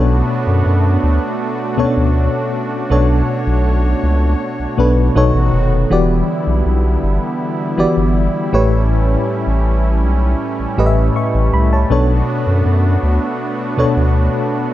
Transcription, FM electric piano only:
0.00 1.11 B2 medium
0.00 1.11 B3 medium
0.00 1.12 D4 medium
0.00 1.12 A4 medium
0.00 1.12 C#5 medium
1.77 2.68 B2 medium
1.77 2.69 B3 medium
1.77 1.85 C#4 medium
1.77 2.69 A4 medium
1.77 2.70 C#5 medium
1.85 2.72 D4 medium
2.90 4.11 B2 medium
2.90 4.11 B3 medium
2.90 4.12 D4 medium
2.90 4.12 A4 medium
2.90 4.12 C#5 medium
4.78 5.14 B2 medium
4.78 5.15 B3 medium
4.78 5.16 D4 medium
4.78 5.16 A4 medium
4.78 5.16 B4 medium
5.15 5.76 B2 loud
5.15 5.76 B3 medium
5.15 5.76 D#4 medium
5.15 5.77 A4 medium
5.15 5.77 C#5 loud
5.90 7.11 E3 medium
5.90 7.12 B3 medium
5.90 7.12 F#4 medium
5.90 7.12 G4 medium
5.90 7.13 D5 medium
7.78 8.53 E3 medium
7.78 8.53 B3 medium
7.78 8.53 F#4 medium
7.78 8.52 G4 medium
7.78 8.54 D5 medium
8.52 9.74 A2 medium
8.52 9.74 A3 medium
8.52 9.74 G4 medium
8.52 9.75 B4 medium
8.52 9.75 C#5 loud
10.77 11.68 A2 medium
10.77 11.69 A3 medium
10.77 11.69 G4 medium
10.77 11.69 B4 medium
10.77 10.85 D#5 medium
10.86 11.16 E5 medium
11.16 11.52 E5 medium
11.16 11.51 C#6 medium
11.54 11.71 B5 medium
11.73 11.91 C#5 medium
11.73 12.08 A5 medium
11.90 13.11 B2 medium
11.90 13.11 B3 medium
11.90 13.12 D4 medium
11.90 13.12 A4 medium
11.90 13.12 C#5 medium
13.77 14.68 B2 medium
13.77 14.69 B3 medium
13.77 14.69 D4 medium
13.77 14.69 A4 medium
13.77 14.70 C#5 medium

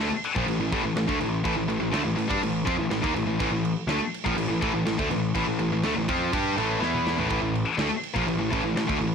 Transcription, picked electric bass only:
0.00 0.10 D2 loud
0.11 muted picked electric bass stroke soft
0.36 0.46 A#1 medium
0.47 0.59 A1 medium
0.60 0.71 A1 medium
0.72 0.83 A1 loud
0.84 0.95 A1 medium
0.95 1.07 A1 medium
1.09 1.20 D2 loud
1.21 1.43 A1 medium
1.45 1.57 A1 loud
1.58 1.68 A1 medium
1.69 1.80 A1 medium
1.81 1.93 A1 medium
1.94 2.05 D2 loud
2.06 2.17 A1 medium
2.18 2.29 A1 medium
2.30 2.42 G2 medium
2.42 2.65 A1 medium
2.67 2.78 F2 loud
2.79 2.90 A1 medium
2.91 3.02 A1 medium
3.04 3.14 D#2 loud
3.15 3.25 A1 medium
3.26 3.38 A1 medium
3.40 3.50 A1 medium
3.50 3.74 A1 medium
3.87 3.99 D2 loud
3.99 muted picked electric bass stroke soft
4.26 4.36 A#1 medium
4.36 4.48 A1 medium
4.50 4.61 A1 medium
4.62 4.73 A1 loud
4.74 4.85 A1 medium
4.87 4.98 A1 medium
4.99 5.10 D2 loud
5.11 5.34 A1 medium
5.35 5.47 A1 loud
5.47 5.59 A1 medium
5.60 5.71 A1 medium
5.72 5.83 A1 medium
5.85 5.96 D2 loud
5.96 6.08 A1 medium
6.09 6.32 F2 medium
6.33 6.56 G2 loud
6.57 6.80 A1 loud
6.82 7.16 E2 loud
7.18 7.29 A1 loud
7.31 7.41 A1 medium
7.42 7.65 A1 medium
7.78 7.90 D2 loud
7.90 muted picked electric bass stroke soft
8.16 8.27 A#1 medium
8.27 8.38 A1 medium
8.38 8.51 A1 medium
8.53 8.63 A1 loud
8.64 8.75 A1 medium
8.75 8.87 A1 medium
8.89 9.00 D2 loud
9.01 9.15 A1 medium

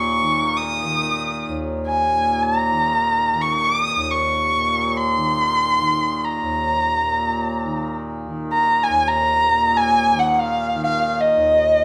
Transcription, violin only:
0.00 0.58 C#6 medium
0.57 1.50 D#6 medium
1.87 2.44 G#5 medium
2.43 3.43 A#5 medium
3.42 3.66 C#6 medium
3.65 3.80 D6 medium
3.80 4.12 D#6 medium
4.11 4.98 C#6 medium
4.97 6.26 C6 medium
6.25 7.92 A#5 medium
8.53 8.85 A#5 medium
8.83 9.09 G#5 medium
9.08 9.78 A#5 loud
9.76 10.21 G#5 loud
10.19 10.33 F#5 medium
10.33 10.41 F#5 medium
10.40 10.83 F5 medium
10.84 11.22 F5 medium
11.21 11.85 D#5 medium

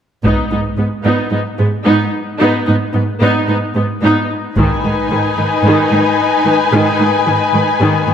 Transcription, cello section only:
0.24 0.32 G#2 soft
0.51 0.59 G#2 soft
0.78 0.86 G#2 soft
1.05 1.13 G#2 soft
1.32 1.40 G#2 soft
1.59 1.67 G#2 soft
1.86 1.94 G#2 soft
2.41 2.49 G#2 medium
2.68 2.76 G#2 soft
2.94 3.02 G#2 soft
3.22 3.30 G#2 medium
3.49 3.57 G#2 soft
3.76 3.84 G#2 soft
4.02 4.10 G#2 medium
4.57 4.65 G#2 soft
4.83 4.91 G#2 soft
5.11 5.19 G#2 soft
5.38 5.46 G#2 soft
5.64 5.72 G#2 soft
5.92 6.00 G#2 soft
6.45 6.53 G#2 soft
6.72 6.80 G#2 medium
6.99 7.07 G#2 soft
7.27 7.35 G#2 soft
7.54 7.62 G#2 soft
7.81 7.89 G#2 soft
8.08 8.14 G#2 soft

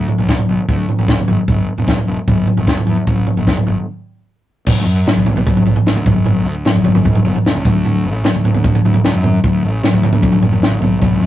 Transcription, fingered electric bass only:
0.19 0.36 B1 medium
0.49 0.57 B1 medium
0.68 0.85 D2 medium
0.99 1.16 A1 medium
1.29 1.37 G1 medium
1.48 1.65 G1 medium
1.77 1.94 E1 medium
2.07 2.16 E1 medium
2.28 2.44 G1 medium
2.57 2.74 G1 medium
2.88 2.96 E2 medium
3.07 3.24 A1 medium
3.37 3.54 G1 medium
3.68 3.76 G1 medium
4.67 4.86 B1 medium
4.86 5.03 F#2 medium
5.16 5.33 B1 medium
5.35 5.61 B1 medium
5.65 5.74 B1 medium
5.86 5.94 A1 medium
5.97 6.05 D2 medium
6.06 6.46 G1 medium
6.46 6.63 D2 medium
6.76 6.93 G1 medium
6.95 7.20 G1 medium
7.24 7.33 G1 medium
7.45 7.53 E1 medium
7.55 7.63 C#2 medium
7.66 8.07 D2 medium
8.06 8.22 A1 medium
8.35 8.51 D2 medium
8.55 8.79 D2 medium
8.85 8.93 D2 medium
9.04 9.12 C#2 medium
9.14 9.38 F#2 medium
9.44 9.64 D2 loud
9.63 9.80 A1 medium
9.93 10.09 D2 medium
10.13 10.38 D2 medium
10.43 10.60 F#1 medium
10.63 10.80 A1 medium
10.82 11.00 B1 medium
11.02 11.22 B1 medium
11.22 11.26 F#2 medium

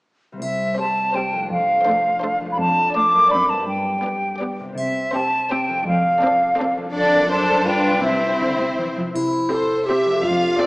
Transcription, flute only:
0.42 0.76 E5 soft
0.79 1.16 A5 medium
1.15 1.51 G5 medium
1.52 2.39 F5 medium
2.52 2.58 B5 soft
2.59 2.95 A5 medium
2.95 3.32 D6 medium
3.31 3.51 B5 medium
3.49 3.67 A5 soft
3.68 4.40 G5 soft
4.77 5.11 E5 soft
5.13 5.52 A5 medium
5.51 5.87 G5 medium
5.87 6.75 F5 medium
6.95 7.28 D5 medium
7.31 7.59 A5 medium
7.60 7.66 A5 soft
7.67 8.03 G5 medium
8.04 8.76 E5 soft

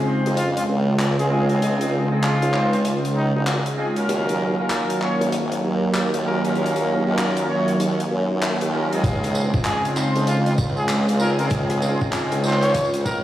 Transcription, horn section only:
0.07 0.35 C4 medium
0.07 0.35 D#4 medium
0.07 0.35 F4 medium
0.07 0.35 C5 medium
1.30 1.47 G#3 medium
1.30 1.47 C4 medium
1.30 1.47 D#4 medium
1.30 1.47 F4 medium
1.30 1.47 G#4 loud
1.49 2.07 G#3 loud
1.49 2.07 C4 loud
1.49 2.07 D#4 medium
1.49 2.07 F4 medium
1.49 2.07 G#4 loud
2.12 2.51 G#3 medium
2.12 2.51 C4 medium
2.12 2.51 D#4 medium
2.12 2.51 F4 medium
2.12 2.51 G#4 medium
2.54 2.82 C4 medium
2.54 2.82 D#4 medium
2.54 2.82 F4 medium
2.54 2.82 C5 loud
3.77 3.94 G#3 loud
3.77 3.94 C4 medium
3.77 3.94 D#4 medium
3.77 3.94 F4 medium
3.77 3.94 G#4 loud
3.97 4.54 A#3 loud
3.97 4.54 C#4 loud
3.97 4.54 F4 medium
3.97 4.54 F#4 medium
3.97 4.54 A#4 loud
4.59 4.99 A#3 medium
4.59 4.99 C#4 medium
4.59 4.98 F4 medium
4.59 4.98 F#4 medium
4.59 4.99 A#4 loud
5.01 5.30 C#4 medium
5.01 5.30 F4 medium
5.01 5.30 F#4 medium
5.01 5.30 C#5 loud
6.25 6.42 A#3 medium
6.25 6.42 C#4 medium
6.25 6.42 F4 medium
6.25 6.42 F#4 medium
6.25 6.42 A#4 loud
6.45 7.02 A#3 loud
6.45 7.02 C#4 loud
6.45 7.02 F4 medium
6.45 7.02 F#4 medium
6.45 7.02 A#4 loud
7.06 7.46 A#3 medium
7.06 7.46 C#4 medium
7.06 7.46 F4 medium
7.06 7.46 F#4 medium
7.06 7.46 A#4 loud
7.49 7.77 C#4 medium
7.49 7.77 F4 medium
7.49 7.77 F#4 medium
7.49 7.77 C#5 loud
8.73 8.89 A#3 medium
8.73 8.89 C#4 medium
8.73 8.89 F4 medium
8.73 8.89 F#4 medium
8.73 8.89 A#4 loud
8.92 9.49 G#3 loud
8.92 9.49 C4 loud
8.92 9.49 D#4 medium
8.92 9.49 F4 medium
8.92 9.49 G#4 loud
9.54 9.93 G#3 medium
9.54 9.94 C4 medium
9.54 9.94 D#4 medium
9.54 9.93 F4 medium
9.54 9.93 G#4 medium
9.96 10.24 C4 medium
9.96 10.24 D#4 medium
9.96 10.24 F4 medium
9.96 10.24 C5 loud
11.20 11.36 G#3 medium
11.20 11.37 C4 medium
11.20 11.37 D#4 medium
11.20 11.37 F4 medium
11.20 11.36 G#4 loud
11.40 11.97 G#3 loud
11.40 11.97 C4 loud
11.40 11.97 D#4 medium
11.40 11.97 F4 medium
11.40 11.97 G#4 loud
12.01 12.41 G#3 medium
12.01 12.41 C4 medium
12.01 12.41 D#4 medium
12.01 12.41 F4 medium
12.01 12.41 G#4 loud
12.44 12.72 C4 medium
12.44 12.72 D#4 medium
12.44 12.72 F4 medium
12.44 12.72 C5 loud

